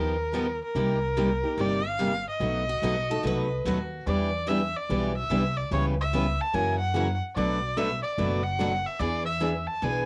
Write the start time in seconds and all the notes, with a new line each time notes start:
Already playing: D#2 F3 B3 D#4 G4 A#4
0.34 F3 B3 D#4 G4
0.64 A#4
0.75 C2 C3 G3 A#3 D#4 G4
1.17 C3 G3 A#3 D#4 G4
1.44 A#3 D#4 G4
1.57 G1 C3 G3 A#3 D#4 G4 D5
1.88 F5
1.99 C3 G3 A#3 D#4 G4
2.30 D#5
2.40 B1 B2 F#3 A3 D#4 F#4 B4
2.69 F#4
2.82 B1 B2 F#3 A3 D#4 F#4 B4
3.10 A3 D#4 F#4 A4
3.23 C2 B2 F#3 A3 D#4 F#4 B4
3.65 D#2 B2 F#3 A3 D#4 F#4 B4
4.07 E2 E3 G3 B3 D4 E4 G4 B4 D5
4.47 E3 G3 B3 D4 E4 G4 B4 E5
4.76 D5
4.89 B1 E3 G3 B3 D4 E4 G4 B4
5.17 E5
5.30 C2 E3 G3 B3 D4 E4 G4 B4
5.57 D5
5.71 C#2 C#3 E3 G3 B3 C#4 E4 G4 B4 C#5
6.01 E5
6.13 C#3 E3 G3 B3 C#4 E4 G4 B4
6.41 A5
6.53 F#2 C#3 E3 F#3 A#3 C#4 E4 F#4 A#4 G#5
6.79 F#5
6.94 C#3 E3 F#3 A#3 C#4 E4 F#4 A#4
7.35 B1 B2 F#3 A3 D4 F#4 B4 D5
7.77 B2 F#3 A3 D4 F#4 B4 E5
8.03 D5
8.18 F#1 B2 F#3 A3 D4 F#4 B4
8.43 F#5
8.60 B2 F#3 A3 D4 F#4 B4
8.86 E5
8.99 E2 E3 B3 D4 G#4 B4 D5
9.26 E5
9.40 E3 B3 D4 G#4 B4
9.67 A5
9.82 B1 E3 B3 D4 G#4 B4 G#5